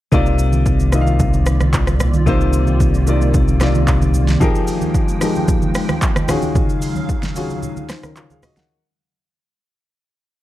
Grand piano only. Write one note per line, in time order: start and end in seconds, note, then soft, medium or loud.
0.12 0.77 C3 loud
0.12 0.77 A#3 medium
0.12 0.77 D#4 medium
0.12 0.78 F4 loud
0.12 0.78 D5 loud
0.92 1.78 C3 medium
0.92 1.79 A#3 medium
0.92 1.79 D#4 medium
0.92 1.79 F4 medium
0.92 1.00 D#5 medium
1.01 1.83 F5 medium
2.26 2.91 C3 loud
2.26 2.91 A#3 loud
2.26 2.92 D#4 medium
2.26 2.92 F4 loud
2.26 2.92 C5 loud
3.06 3.50 C3 medium
3.06 3.50 A#3 medium
3.06 3.51 D#4 medium
3.06 3.51 F4 medium
3.06 3.51 D5 medium
3.60 4.25 C3 medium
3.60 4.25 A#3 medium
3.60 4.26 D#4 medium
3.60 4.26 F4 medium
3.60 4.26 D5 medium
4.40 5.05 F3 loud
4.40 5.06 D#4 loud
4.40 5.06 G4 medium
4.40 5.06 G#4 loud
4.40 5.07 A#4 loud
5.20 6.07 F3 medium
5.20 6.07 D#4 medium
5.20 6.08 G4 medium
5.20 6.08 G#4 medium
5.20 6.08 A#4 medium
6.28 7.14 D#3 medium
6.28 7.14 C#4 medium
6.28 7.15 F4 medium
6.28 7.15 F#4 medium
6.28 7.15 G#4 loud
7.35 7.79 D#3 medium
7.35 7.79 C#4 medium
7.35 7.79 F4 medium
7.35 7.80 F#4 medium
7.35 7.80 G#4 medium
7.90 8.03 D#4 medium
7.90 8.03 C5 medium
8.04 8.16 C#4 medium
8.04 8.16 A#4 medium
8.17 8.30 F4 medium
8.17 8.30 C#5 medium
8.30 8.43 G#4 medium
8.30 8.42 F5 medium
8.44 8.57 F#4 medium
8.44 8.57 D#5 medium
8.57 8.83 A#4 medium
8.57 8.83 F#5 medium